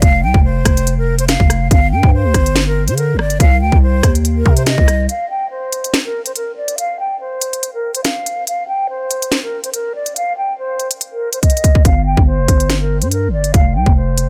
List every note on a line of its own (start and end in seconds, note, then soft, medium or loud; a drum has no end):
0.02 0.25 F1 loud
0.02 0.21 F5 loud
0.02 kick loud
0.02 closed hi-hat medium
0.23 0.34 C2 loud
0.23 0.43 G5 medium
0.34 0.64 F1 loud
0.34 kick loud
0.44 0.94 C5 medium
0.65 1.37 F1 loud
0.65 kick medium
0.65 cross-stick loud
0.65 closed hi-hat medium
0.77 closed hi-hat medium
0.87 closed hi-hat medium
0.98 1.17 A#4 medium
1.19 1.28 C5 medium
1.19 closed hi-hat medium
1.28 1.68 F5 medium
1.28 snare loud
1.28 closed hi-hat medium
1.40 1.70 F1 loud
1.40 kick medium
1.50 cross-stick medium
1.50 closed hi-hat medium
1.71 1.94 G1 loud
1.71 1.91 F5 medium
1.71 kick loud
1.71 closed hi-hat medium
1.92 2.03 G2 loud
1.92 2.11 G5 medium
2.03 2.26 G2 loud
2.03 kick loud
2.13 2.64 C5 medium
2.24 2.34 D2 loud
2.34 2.89 G1 loud
2.34 kick medium
2.34 cross-stick loud
2.34 closed hi-hat medium
2.46 closed hi-hat medium
2.56 snare loud
2.56 closed hi-hat medium
2.67 2.86 A#4 medium
2.88 3.16 D3 loud
2.88 2.97 C5 medium
2.88 closed hi-hat medium
2.98 3.17 A#4 medium
2.98 closed hi-hat medium
3.14 3.39 G1 loud
3.19 3.38 D5 medium
3.19 cross-stick loud
3.30 closed hi-hat medium
3.40 3.63 C2 loud
3.40 3.60 F5 loud
3.40 kick loud
3.40 closed hi-hat medium
3.61 3.72 D2 loud
3.61 3.80 G5 medium
3.72 4.02 C2 loud
3.72 kick loud
3.82 4.12 C5 medium
4.03 4.44 D#2 loud
4.03 kick medium
4.03 cross-stick loud
4.03 closed hi-hat medium
4.15 closed hi-hat medium
4.25 closed hi-hat medium
4.36 4.55 A#4 medium
4.46 4.77 C3 loud
4.46 kick loud
4.57 4.66 C5 medium
4.57 closed hi-hat medium
4.66 5.07 D#5 medium
4.66 snare loud
4.66 closed hi-hat medium
4.78 5.08 C2 loud
4.78 kick medium
4.88 cross-stick loud
4.88 closed hi-hat medium
5.09 5.29 F5 loud
5.09 closed hi-hat medium
5.30 5.49 G5 medium
5.50 6.01 C5 medium
5.72 closed hi-hat medium
5.84 closed hi-hat medium
5.94 snare loud
5.94 closed hi-hat medium
6.05 6.24 A#4 medium
6.26 6.35 C5 medium
6.26 closed hi-hat medium
6.36 6.55 A#4 medium
6.36 closed hi-hat medium
6.57 6.76 D5 medium
6.68 closed hi-hat medium
6.78 6.97 F5 loud
6.78 closed hi-hat medium
7.00 7.19 G5 medium
7.20 7.70 C5 medium
7.41 closed hi-hat medium
7.53 closed hi-hat medium
7.63 closed hi-hat medium
7.74 7.93 A#4 medium
7.95 8.04 C5 medium
7.95 closed hi-hat medium
8.04 8.44 F5 medium
8.04 snare loud
8.04 closed hi-hat medium
8.26 closed hi-hat medium
8.47 8.67 F5 medium
8.47 closed hi-hat medium
8.68 8.87 G5 medium
8.89 9.40 C5 medium
9.11 closed hi-hat medium
9.22 closed hi-hat medium
9.32 snare loud
9.32 closed hi-hat medium
9.43 9.62 A#4 medium
9.64 9.73 C5 medium
9.64 closed hi-hat medium
9.74 9.93 A#4 medium
9.74 closed hi-hat medium
9.95 10.14 D5 medium
10.06 closed hi-hat medium
10.16 10.36 F5 loud
10.16 closed hi-hat medium
10.37 10.57 G5 medium
10.58 10.88 C5 medium
10.79 closed hi-hat medium
10.91 closed hi-hat medium
11.01 closed hi-hat medium
11.12 11.31 A#4 medium
11.33 11.42 C5 medium
11.33 closed hi-hat medium
11.43 11.83 D#5 medium
11.43 kick medium
11.43 closed hi-hat medium
11.50 closed hi-hat medium
11.57 closed hi-hat medium
11.64 kick medium
11.64 closed hi-hat medium
11.75 kick medium
11.85 12.16 G1 loud
11.85 12.05 F5 medium
11.85 kick loud
11.85 closed hi-hat medium
12.06 12.25 G5 medium
12.17 12.40 G1 loud
12.17 kick loud
12.26 12.77 C5 medium
12.39 12.48 F1 loud
12.48 13.03 G1 loud
12.48 kick medium
12.48 closed hi-hat medium
12.60 closed hi-hat medium
12.70 snare loud
12.70 closed hi-hat medium
12.81 13.00 A#4 medium
13.02 13.30 G2 loud
13.02 13.11 C5 medium
13.02 closed hi-hat medium
13.11 13.31 A#4 medium
13.11 closed hi-hat medium
13.28 13.53 G1 loud
13.33 13.52 D5 medium
13.44 closed hi-hat medium
13.54 13.77 F1 loud
13.54 13.73 F5 loud
13.54 kick loud
13.54 closed hi-hat medium
13.75 13.86 C2 loud
13.75 13.95 G5 medium
13.86 14.29 F1 loud
13.86 kick medium
13.96 14.29 C5 medium
14.18 closed hi-hat medium